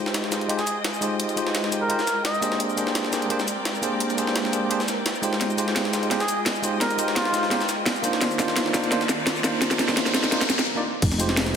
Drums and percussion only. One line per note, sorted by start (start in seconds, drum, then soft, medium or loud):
0.06 snare medium
0.14 snare loud
0.14 closed hi-hat medium
0.24 snare soft
0.32 snare medium
0.32 closed hi-hat medium
0.32 shaker medium
0.41 closed hi-hat soft
0.49 closed hi-hat medium
0.59 snare soft
0.59 shaker soft
0.67 closed hi-hat medium
0.67 shaker medium
0.84 snare loud
0.84 closed hi-hat loud
0.84 closed hi-hat medium
0.94 shaker soft
1.02 closed hi-hat medium
1.02 shaker medium
1.20 closed hi-hat loud
1.20 closed hi-hat medium
1.29 closed hi-hat soft
1.29 shaker soft
1.37 closed hi-hat medium
1.37 shaker medium
1.47 snare soft
1.55 snare loud
1.55 closed hi-hat medium
1.64 snare medium
1.72 closed hi-hat medium
1.72 shaker medium
1.90 closed hi-hat medium
1.99 snare soft
1.99 shaker soft
2.07 snare soft
2.07 closed hi-hat medium
2.07 shaker medium
2.25 snare loud
2.25 closed hi-hat medium
2.34 shaker soft
2.42 closed hi-hat medium
2.42 shaker medium
2.52 snare soft
2.60 closed hi-hat medium
2.69 shaker soft
2.78 closed hi-hat medium
2.78 shaker medium
2.87 snare soft
2.95 snare loud
2.95 closed hi-hat medium
3.05 snare soft
3.13 snare medium
3.13 closed hi-hat medium
3.13 shaker medium
3.22 closed hi-hat soft
3.30 closed hi-hat medium
3.40 snare soft
3.40 shaker soft
3.48 closed hi-hat medium
3.48 shaker medium
3.65 snare loud
3.65 closed hi-hat medium
3.75 shaker soft
3.83 closed hi-hat medium
3.83 shaker medium
4.00 closed hi-hat medium
4.10 closed hi-hat soft
4.10 shaker soft
4.18 closed hi-hat medium
4.18 shaker medium
4.27 snare soft
4.36 snare loud
4.36 closed hi-hat medium
4.45 snare medium
4.53 closed hi-hat medium
4.53 shaker medium
4.71 closed hi-hat medium
4.80 snare soft
4.80 shaker soft
4.88 snare soft
4.88 closed hi-hat medium
4.88 shaker medium
5.06 snare loud
5.06 closed hi-hat medium
5.15 shaker soft
5.23 closed hi-hat medium
5.23 shaker medium
5.33 snare medium
5.41 snare soft
5.41 closed hi-hat medium
5.50 shaker soft
5.58 closed hi-hat medium
5.58 shaker medium
5.68 snare medium
5.76 snare medium
5.76 snare loud
5.76 closed hi-hat medium
5.85 snare soft
5.93 snare medium
5.93 closed hi-hat medium
5.93 shaker medium
6.03 closed hi-hat soft
6.11 snare soft
6.11 closed hi-hat medium
6.20 snare soft
6.20 shaker soft
6.28 closed hi-hat medium
6.28 shaker medium
6.46 snare medium
6.46 snare loud
6.46 closed hi-hat medium
6.55 shaker soft
6.64 closed hi-hat medium
6.64 shaker medium
6.81 snare medium
6.81 closed hi-hat medium
6.90 closed hi-hat soft
6.90 shaker soft
6.99 closed hi-hat medium
6.99 shaker medium
7.08 snare soft
7.16 snare medium
7.16 snare loud
7.16 closed hi-hat medium
7.25 snare medium
7.34 snare soft
7.34 closed hi-hat medium
7.34 shaker medium
7.43 snare soft
7.51 snare medium
7.51 closed hi-hat medium
7.61 snare soft
7.61 shaker soft
7.69 snare soft
7.69 closed hi-hat medium
7.69 shaker medium
7.86 snare loud
7.86 snare medium
7.86 closed hi-hat medium
7.96 shaker soft
8.04 closed hi-hat medium
8.04 shaker medium
8.13 snare medium
8.21 snare medium
8.21 closed hi-hat medium
8.31 shaker soft
8.39 snare medium
8.39 closed hi-hat medium
8.39 shaker medium
8.48 snare medium
8.56 snare loud
8.56 snare medium
8.56 closed hi-hat medium
8.56 closed hi-hat loud
8.66 snare soft
8.74 snare medium
8.74 closed hi-hat medium
8.74 shaker medium
8.84 closed hi-hat soft
8.92 snare medium
8.92 closed hi-hat medium
9.01 snare medium
9.01 shaker soft
9.09 snare medium
9.09 closed hi-hat medium
9.09 shaker medium
9.27 snare medium
9.27 snare loud
9.27 closed hi-hat loud
9.27 closed hi-hat medium
9.36 shaker soft
9.44 snare medium
9.44 closed hi-hat medium
9.44 shaker medium
9.62 snare medium
9.62 closed hi-hat loud
9.62 closed hi-hat medium
9.71 snare medium
9.71 closed hi-hat soft
9.71 shaker soft
9.79 snare medium
9.79 closed hi-hat medium
9.79 shaker medium
9.88 snare medium
9.88 snare soft
9.97 snare loud
9.97 closed hi-hat loud
9.97 closed hi-hat medium
10.06 snare medium
10.06 shaker soft
10.14 snare loud
10.14 closed hi-hat medium
10.14 shaker medium
10.24 snare medium
10.32 snare medium
10.32 closed hi-hat medium
10.41 snare loud
10.41 snare medium
10.41 closed hi-hat medium
10.41 shaker soft
10.50 snare loud
10.50 closed hi-hat medium
10.50 shaker medium
10.59 snare medium
10.59 closed hi-hat medium
11.02 kick loud
11.02 closed hi-hat medium
11.02 crash loud
11.12 snare soft
11.12 shaker soft
11.20 closed hi-hat medium
11.20 shaker medium
11.29 snare medium
11.29 snare soft
11.37 snare loud
11.37 closed hi-hat medium
11.46 snare soft
11.46 shaker soft